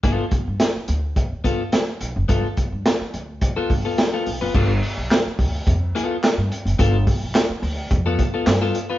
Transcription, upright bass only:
\new Staff \with { instrumentName = "Upright bass" } { \clef bass \time 4/4 \key g \mixolydian \tempo 4 = 107 g,,16 r8 g,16 r8 d,8 r8 g,,16 r8. b,,16 fis,,16 | g,,16 r8 g,16 r8 d,8 r8 g,,16 r8. b,,16 fis,,16 | g,,8 r16 b,,16 r8 d,8 f,8 r8. g,16 r16 fis,,16 | g,,8 r16 b,,16 r8 d,8 f,8 r8 g,8 r8 | }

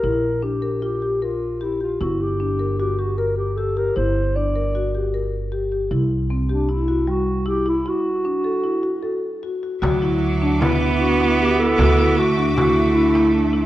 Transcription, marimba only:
\new Staff \with { instrumentName = "Marimba" } { \time 5/4 \key d \mixolydian \tempo 4 = 153 e'4 d'8 bes'8 f'8 g'8 bes'4 g'8 g'8 | e'4 d'8 bes'8 fis'8 g'8 bes'4 g'8 g'8 | e'4 d'8 bes'8 fis'8 g'8 bes'4 g'8 g'8 | e'4 c'8 g'8 e'8 fis'8 g4 e'8 e'8 |
e'4 d'8 a'8 e'8 fis'8 a'4 fis'8 fis'8 | fis'8 e'4 d'8 e'8 e'8 d'8 e'4 e'8 | fis'8 e'4 d'8 e'8 e'8 d'8 e'4 e'8 | }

